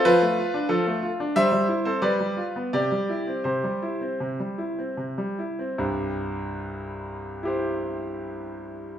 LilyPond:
<<
  \new Staff \with { instrumentName = "Grand piano" } { \time 4/4 \key c \major \tempo 4 = 79 <f' b'>4 <f' a'>4 <c'' e''>8. <a' c''>16 <b' d''>4 | <g' d''>4 <g' c''>2 r4 | r2 <e' g' c''>2 | }
  \new Staff \with { instrumentName = "Grand piano" } { \time 4/4 \key c \major f16 a16 f'16 d'16 f16 a16 f'16 d'16 g16 g16 e'16 c'16 g16 g16 f'16 b16 | c16 g16 e'16 c'16 c16 g16 e'16 c'16 c16 g16 e'16 c'16 c16 g16 e'16 c'16 | <c, g,>1 | }
>>